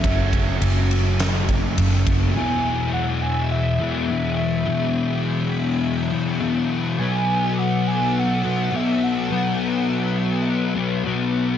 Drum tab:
RD |xxxxxxxx|--------|--------|--------|
SD |----o---|--------|--------|--------|
BD |oo---o-o|--------|--------|--------|

RD |--------|
SD |--------|
BD |--------|